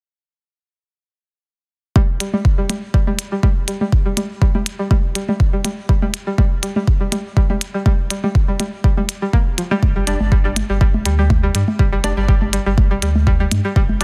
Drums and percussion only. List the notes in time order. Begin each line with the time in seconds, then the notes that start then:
1.96 kick, high conga
2.20 closed hi-hat
2.34 high conga
2.45 kick
2.69 closed hi-hat, high conga
2.94 kick
3.07 high conga
3.19 closed hi-hat
3.43 kick, high conga
3.68 closed hi-hat
3.81 high conga
3.92 kick
4.17 closed hi-hat, high conga
4.42 kick
4.55 high conga
4.66 closed hi-hat
4.91 kick, high conga
5.15 closed hi-hat
5.29 high conga
5.40 kick
5.65 closed hi-hat, high conga
5.89 kick
6.02 high conga
6.14 closed hi-hat
6.38 kick, high conga
6.63 closed hi-hat
6.76 high conga
6.87 kick
7.12 closed hi-hat, high conga
7.37 kick
7.50 high conga
7.61 closed hi-hat
7.86 kick, high conga
8.10 closed hi-hat
8.24 high conga
8.35 kick
8.60 closed hi-hat, high conga
8.84 kick
8.97 high conga
9.09 closed hi-hat
9.33 kick, high conga
9.58 closed hi-hat
9.71 high conga
9.83 kick, high conga
10.07 closed hi-hat
10.20 high conga
10.32 kick
10.56 closed hi-hat, high conga
10.81 kick
10.94 high conga
11.06 closed hi-hat
11.30 kick, high conga
11.55 closed hi-hat
11.68 high conga
11.79 kick
12.04 closed hi-hat, high conga
12.29 kick
12.42 high conga
12.53 closed hi-hat
12.78 kick, high conga
13.02 closed hi-hat
13.16 high conga
13.27 kick
13.51 closed hi-hat, high conga
13.76 kick
13.89 high conga
14.01 closed hi-hat